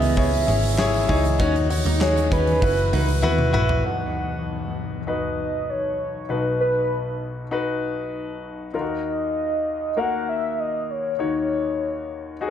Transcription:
0.00 0.44 C#2 medium
0.00 1.42 C#3 medium
0.00 0.30 B3 medium
0.00 0.16 E4 medium
0.00 0.17 G#4 medium
0.00 1.41 A#4 medium
0.00 0.17 C#5 medium
0.00 0.15 D#5 medium
0.00 0.14 E5 loud
0.00 hi-hat pedal medium
0.00 open hi-hat medium
0.16 0.45 E4 medium
0.16 0.46 G#4 medium
0.16 0.46 C#5 medium
0.16 1.12 E5 loud
0.16 kick medium
0.16 hi-hat pedal medium
0.16 open hi-hat medium
0.33 hi-hat pedal medium
0.33 open hi-hat soft
0.47 1.05 G#1 medium
0.47 0.63 C#4 medium
0.47 0.76 E4 medium
0.47 0.76 G#4 medium
0.47 0.76 C#5 medium
0.47 hi-hat pedal medium
0.47 open hi-hat medium
0.63 hi-hat pedal medium
0.63 open hi-hat medium
0.78 1.07 E4 medium
0.78 1.07 G#4 medium
0.78 1.07 C#5 loud
0.78 snare loud
0.78 clap medium
0.78 hi-hat pedal medium
0.78 open hi-hat medium
0.94 hi-hat pedal medium
0.94 open hi-hat soft
1.08 1.38 C#2 medium
1.08 1.24 D#4 medium
1.08 1.37 E4 loud
1.08 1.38 G#4 medium
1.08 1.38 C#5 loud
1.08 1.71 D#5 medium
1.08 kick medium
1.08 hi-hat pedal medium
1.08 open hi-hat medium
1.24 hi-hat pedal medium
1.24 open hi-hat medium
1.39 1.82 D#2 loud
1.39 2.28 D#3 medium
1.39 1.55 C#4 loud
1.39 1.68 D#4 medium
1.39 1.68 F#4 medium
1.39 1.68 C#5 medium
1.39 kick loud
1.39 hi-hat pedal medium
1.39 open hi-hat medium
1.55 hi-hat pedal medium
1.70 1.98 D#4 medium
1.70 1.99 F#4 medium
1.70 1.99 C#5 medium
1.70 hi-hat pedal medium
1.70 open hi-hat medium
1.85 2.28 D#2 loud
1.85 2.00 D#4 medium
1.85 open hi-hat soft
2.01 2.29 D#4 medium
2.01 2.30 F#4 medium
2.01 2.30 G#4 medium
2.01 2.30 C#5 loud
2.01 snare loud
2.01 clap medium
2.01 hi-hat pedal medium
2.01 open hi-hat medium
2.17 hi-hat pedal medium
2.31 2.60 D#2 medium
2.31 2.75 C#4 medium
2.31 2.60 D#4 medium
2.31 2.60 F#4 medium
2.31 3.50 B4 loud
2.31 2.60 C#5 medium
2.31 kick medium
2.31 hi-hat pedal medium
2.31 open hi-hat medium
2.47 open hi-hat medium
2.62 2.91 F#1 loud
2.62 2.90 E4 medium
2.62 2.91 F#4 medium
2.62 2.91 B4 medium
2.62 kick medium
2.62 hi-hat pedal medium
2.62 open hi-hat medium
2.78 hi-hat pedal medium
2.92 3.21 C#2 loud
2.92 3.07 D#4 medium
2.92 3.21 E4 medium
2.92 3.21 F#4 medium
2.92 3.22 B4 medium
2.92 hi-hat pedal medium
2.92 open hi-hat medium
3.09 open hi-hat medium
3.22 3.52 D#2 medium
3.22 3.51 E4 loud
3.22 3.52 F#4 loud
3.22 3.52 B4 loud
3.22 high tom medium
3.39 mid tom medium
3.53 3.82 A#1 medium
3.53 3.82 E4 loud
3.53 3.69 E4 medium
3.53 3.82 F#4 loud
3.53 3.82 B4 loud
3.53 mid tom medium
3.69 floor tom loud
3.84 6.25 B1 soft
3.84 6.25 B2 soft
3.84 4.98 D#4 medium
3.84 4.98 F#4 soft
3.84 4.99 B4 medium
3.84 4.73 F#5 loud
5.07 6.21 D#4 medium
5.07 6.21 F#4 soft
5.07 6.21 B4 medium
5.07 5.71 D#5 medium
5.70 6.32 C#5 medium
6.29 8.70 B1 soft
6.29 8.70 B2 soft
6.29 7.43 D#4 medium
6.29 7.43 F#4 soft
6.29 7.44 B4 medium
6.29 6.60 B4 medium
6.61 7.18 B4 medium
7.51 8.65 D#4 medium
7.51 8.66 F#4 medium
7.51 8.66 B4 medium
8.74 11.15 D#2 soft
8.74 11.15 D#3 soft
8.74 9.88 D#4 soft
8.74 8.81 F4 soft
8.74 9.88 A#4 medium
8.74 10.00 D#5 medium
8.81 9.91 F#4 soft
9.97 11.11 A#3 medium
9.97 11.11 F#4 medium
9.97 11.11 A#4 medium
9.97 10.28 F#5 loud
10.29 10.61 E5 medium
10.59 10.92 D#5 medium
10.90 12.50 C#5 medium
11.19 12.50 D#2 soft
11.19 12.50 D#3 soft
11.19 12.33 D#4 medium
11.19 12.33 F#4 soft
11.19 12.34 C#5 medium
12.41 12.50 D#4 medium
12.41 12.50 F#4 medium
12.41 12.48 G#4 medium

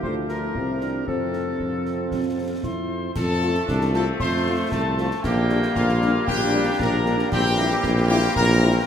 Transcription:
0.03 0.49 D2 medium
0.03 0.56 F3 medium
0.03 0.56 A3 medium
0.03 0.55 D4 medium
0.03 0.38 F4 medium
0.03 0.15 C5 medium
0.03 concert bass drum medium
0.29 1.03 A#4 medium
0.29 snare soft
0.55 1.02 C2 medium
0.55 1.07 C3 medium
0.55 1.07 G3 medium
0.55 1.07 C4 soft
0.55 0.79 E4 medium
0.55 1.08 E4 soft
0.55 concert bass drum medium
0.81 1.06 D4 medium
0.81 snare soft
1.07 1.54 F2 medium
1.07 2.86 C3 medium
1.07 2.90 F3 medium
1.07 1.51 C4 medium
1.07 2.86 C4 medium
1.07 2.60 F4 soft
1.07 2.60 A4 medium
1.07 concert bass drum medium
1.33 snare soft
1.59 2.06 F2 medium
1.59 2.34 C4 medium
1.59 concert bass drum medium
1.86 snare soft
2.11 2.58 F2 soft
2.11 concert bass drum medium
2.11 snare medium
2.38 2.50 C4 soft
2.63 3.10 F2 medium
2.63 3.12 E4 soft
2.63 3.12 C5 medium
2.63 3.12 C6 medium
2.63 concert bass drum medium
2.63 snare soft
3.15 3.59 F2 medium
3.15 5.20 F3 medium
3.15 5.20 A3 medium
3.15 3.90 A4 loud
3.15 3.90 A5 loud
3.15 concert bass drum medium
3.15 snare medium
3.15 crash medium
3.42 3.51 F3 medium
3.42 3.51 A3 medium
3.42 3.51 F4 medium
3.42 snare medium
3.55 snare medium
3.67 4.12 C2 medium
3.67 3.92 D4 medium
3.67 concert bass drum medium
3.67 snare medium
3.81 snare medium
3.93 4.03 F3 medium
3.93 4.03 A3 medium
3.93 4.20 C4 medium
3.93 4.03 F4 medium
3.93 4.05 A4 loud
3.93 4.00 A5 medium
3.93 snare medium
4.19 4.64 F2 medium
4.19 5.20 A3 medium
4.19 4.68 C5 loud
4.19 4.68 C6 medium
4.19 concert bass drum medium
4.19 snare medium
4.46 4.56 F3 medium
4.46 4.56 A3 medium
4.46 4.56 F4 medium
4.71 5.11 C2 medium
4.71 5.20 A4 medium
4.71 5.25 A5 medium
4.71 concert bass drum medium
4.71 snare medium
4.98 5.07 F3 medium
4.98 5.07 A3 medium
4.98 5.07 F4 medium
4.98 snare medium
5.11 snare medium
5.23 5.67 A#1 medium
5.23 7.32 G3 medium
5.23 7.32 A#3 medium
5.23 6.24 A#3 loud
5.23 5.72 G4 loud
5.23 5.77 G5 medium
5.23 concert bass drum loud
5.23 snare medium
5.23 crash soft
5.50 5.59 G3 medium
5.50 5.59 A#3 medium
5.50 5.59 D4 medium
5.50 snare medium
5.63 snare medium
5.75 6.19 A#1 medium
5.75 6.24 F4 loud
5.75 6.30 F5 loud
5.75 concert bass drum loud
5.75 snare medium
5.89 snare medium
6.02 6.11 G3 medium
6.02 6.11 A#3 medium
6.02 6.11 D4 medium
6.02 snare medium
6.27 6.71 A#1 medium
6.27 7.28 D4 loud
6.27 6.76 G4 loud
6.27 6.81 G5 medium
6.27 concert bass drum medium
6.27 snare medium
6.54 6.64 G3 medium
6.54 6.64 A#3 medium
6.54 6.63 D4 medium
6.80 7.23 A#1 medium
6.80 7.28 A#4 loud
6.80 7.31 A#5 loud
6.80 concert bass drum medium
6.80 snare medium
7.06 7.16 G3 medium
7.06 7.15 A#3 medium
7.06 7.16 D4 medium
7.06 snare medium
7.19 snare medium
7.31 7.75 A#1 medium
7.31 8.87 E3 loud
7.31 7.43 C4 medium
7.31 8.87 C4 medium
7.31 8.05 G4 loud
7.31 7.79 G5 loud
7.31 concert bass drum loud
7.31 snare medium
7.31 crash soft
7.57 7.67 G3 medium
7.57 8.83 A#3 loud
7.57 7.68 C4 medium
7.57 7.67 E4 medium
7.57 snare medium
7.71 snare medium
7.83 8.27 A#1 loud
7.83 concert bass drum medium
7.83 snare medium
7.97 snare medium
8.09 8.19 G3 medium
8.09 8.19 C4 medium
8.09 8.19 E4 medium
8.09 8.33 G4 loud
8.09 8.16 G5 loud
8.09 snare medium
8.35 8.79 A#1 loud
8.35 8.84 A#4 loud
8.35 8.84 A#5 loud
8.35 concert bass drum loud
8.35 snare medium
8.62 8.71 G3 medium
8.62 8.71 C4 medium
8.62 8.71 E4 medium

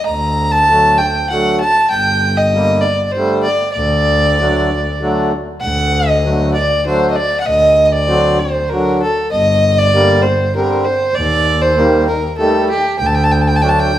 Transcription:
0.06 1.19 D2 medium
0.06 0.53 A#5 medium
0.52 1.00 A5 loud
0.69 1.00 D3 medium
0.69 1.00 F#3 soft
0.69 1.01 A3 medium
0.98 1.29 G5 medium
1.30 1.62 D3 medium
1.30 1.62 F#3 soft
1.30 1.62 A3 medium
1.30 1.59 F#5 medium
1.61 1.89 A5 loud
1.90 3.03 G1 medium
1.90 2.38 G5 loud
2.37 2.83 D#5 medium
2.54 2.85 D3 medium
2.54 2.85 G3 medium
2.54 2.85 A#3 medium
2.81 3.06 D5 medium
3.06 3.13 D5 medium
3.12 3.42 C5 medium
3.16 3.47 D3 medium
3.16 3.47 G3 soft
3.16 3.47 A3 medium
3.43 3.72 D5 medium
3.73 5.25 D5 medium
3.77 4.88 D2 loud
4.38 4.70 D3 medium
4.38 4.70 F#3 medium
4.38 4.70 A3 medium
5.01 5.32 D3 medium
5.01 5.32 F#3 medium
5.01 5.32 A3 medium
5.61 6.74 D2 medium
5.61 6.09 F#5 medium
6.08 6.53 D#5 medium
6.24 6.55 D3 medium
6.24 6.55 F#3 soft
6.24 6.55 A3 medium
6.54 6.83 D5 medium
6.86 7.17 D3 medium
6.86 7.17 F#3 medium
6.86 7.17 A3 medium
6.86 7.08 C5 medium
7.10 7.17 D#5 soft
7.16 7.40 D5 medium
7.40 7.48 F#5 medium
7.46 8.59 D2 medium
7.46 7.85 D#5 medium
7.85 7.94 D#5 soft
7.92 8.41 D5 medium
8.08 8.40 D3 medium
8.08 8.39 F#3 medium
8.08 8.40 C4 medium
8.39 8.71 C5 medium
8.69 9.02 D3 medium
8.69 9.02 F#3 medium
8.69 9.01 A#4 medium
9.02 9.31 A4 medium
9.32 10.43 G1 loud
9.32 9.80 D#5 medium
9.78 10.24 D5 medium
9.94 10.24 D3 medium
9.94 10.25 G3 medium
9.94 10.25 A#3 medium
10.22 10.54 C5 medium
10.55 10.86 D3 medium
10.55 10.86 G3 medium
10.55 10.86 C4 medium
10.55 10.86 A#4 medium
10.85 11.16 C5 medium
11.15 12.26 D#2 medium
11.15 11.63 D5 loud
11.62 12.07 C5 medium
11.77 12.08 D#3 medium
11.77 12.08 G3 medium
11.77 12.08 A#3 medium
12.07 12.36 A#4 medium
12.38 12.69 D#3 medium
12.38 12.70 G3 medium
12.38 12.70 A3 medium
12.38 12.67 A4 medium
12.70 12.98 G4 medium
12.99 13.99 D2 loud
12.99 13.08 G5 medium
13.06 13.16 A5 medium
13.15 13.25 G5 medium
13.24 13.33 A5 medium
13.32 13.43 G5 medium
13.42 13.49 A5 medium
13.48 13.57 G5 medium
13.56 13.63 A5 medium
13.62 13.92 F#3 soft
13.62 13.92 A3 soft
13.62 13.92 D4 medium
13.62 13.70 G5 medium
13.69 13.81 A5 medium
13.80 13.99 G5 medium

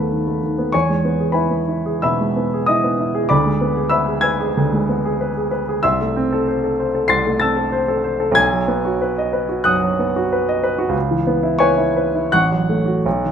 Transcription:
0.00 0.76 D#2 soft
0.00 0.12 D#3 soft
0.00 0.27 A3 soft
0.00 0.58 B3 soft
0.00 0.77 A4 soft
0.00 0.77 B4 soft
0.00 0.77 F#5 soft
0.00 0.77 A5 medium
0.00 0.77 B5 medium
0.12 0.37 D#3 soft
0.27 0.52 A3 soft
0.43 0.68 D#3 soft
0.58 0.74 B3 soft
0.72 2.01 E2 soft
0.72 1.32 C#5 medium
0.72 1.32 G#5 medium
0.72 1.35 C#6 medium
0.89 1.14 G#3 soft
1.05 1.30 B3 soft
1.20 1.45 G#4 soft
1.32 1.62 E4 soft
1.32 1.99 B4 soft
1.32 2.00 G#5 soft
1.32 2.02 B5 medium
1.50 1.79 B3 soft
1.68 1.97 E4 soft
1.86 2.14 G#4 soft
2.02 2.31 B2 soft
2.02 2.64 E5 medium
2.02 2.64 B5 medium
2.02 2.68 E6 medium
2.20 2.46 G#3 soft
2.36 2.62 B3 soft
2.54 2.79 G#4 soft
2.66 2.94 E4 soft
2.66 3.27 D#5 medium
2.66 3.31 D#6 medium
2.84 3.09 B3 soft
2.99 3.25 E4 soft
3.15 3.31 G#4 medium
3.29 4.53 D2 medium
3.29 3.89 D5 medium
3.29 3.89 B5 medium
3.29 3.92 D6 medium
3.46 3.72 G#3 soft
3.61 3.87 B3 soft
3.77 4.02 G#4 soft
3.89 4.18 B4 soft
3.89 4.21 E5 medium
3.89 4.21 B5 medium
3.89 4.21 E6 medium
4.08 4.34 G#4 soft
4.21 4.50 B4 medium
4.21 5.47 G#5 medium
4.21 5.47 E6 medium
4.21 5.50 G#6 medium
4.40 4.67 G#4 soft
4.57 5.79 D2 medium
4.73 4.99 G#3 soft
4.89 5.14 B3 soft
5.05 5.30 G#4 medium
5.21 5.46 B4 medium
5.37 5.62 G#4 soft
5.51 5.77 B4 medium
5.69 5.84 G#4 medium
5.83 7.05 C2 medium
5.83 7.05 E5 medium
5.83 7.05 C6 medium
5.83 7.08 E6 medium
6.01 6.25 A3 soft
6.16 6.41 C4 medium
6.32 6.57 A4 medium
6.48 6.72 C5 medium
6.64 6.88 A4 soft
6.80 7.04 C5 soft
6.95 7.19 A4 medium
7.08 8.33 C2 medium
7.08 7.38 C6 medium
7.08 7.38 A6 medium
7.08 7.40 C7 medium
7.27 7.51 A3 soft
7.40 7.66 C4 soft
7.40 8.33 A5 medium
7.40 8.33 E6 medium
7.40 8.36 A6 medium
7.57 7.82 A4 medium
7.72 7.98 C5 medium
7.88 8.14 A4 medium
8.04 8.30 C5 medium
8.20 8.37 A4 medium
8.31 9.61 B1 medium
8.31 9.67 G#6 loud
8.36 9.63 G#5 medium
8.53 8.80 F#3 soft
8.68 8.95 B3 medium
8.85 9.12 F#4 medium
9.02 9.28 B4 medium
9.18 9.44 D#5 medium
9.33 9.60 B4 medium
9.49 9.76 F#4 medium
9.64 9.93 F#2 medium
9.64 10.90 F#5 medium
9.64 10.90 D#6 medium
9.64 10.93 F#6 medium
9.84 10.10 F#3 soft
9.99 10.25 B3 soft
10.16 10.42 F#4 medium
10.33 10.58 B4 medium
10.49 10.73 D#5 medium
10.63 10.89 B4 medium
10.79 10.95 F#4 medium
10.89 12.26 C#2 medium
11.11 11.37 E3 soft
11.27 11.53 B3 medium
11.43 11.70 E4 medium
11.59 11.88 B4 medium
11.59 12.29 C#5 medium
11.59 12.29 G#5 medium
11.59 12.32 C#6 medium
11.78 12.07 E4 medium
11.96 12.26 B4 medium
12.15 12.33 E4 medium
12.32 13.03 A1 medium
12.32 13.32 F#5 medium
12.32 13.32 C#6 medium
12.32 13.32 F#6 medium
12.52 12.80 F#3 soft
12.69 12.98 A3 soft
12.86 13.05 F#4 soft
13.06 13.32 B1 medium
13.24 13.32 D#3 soft

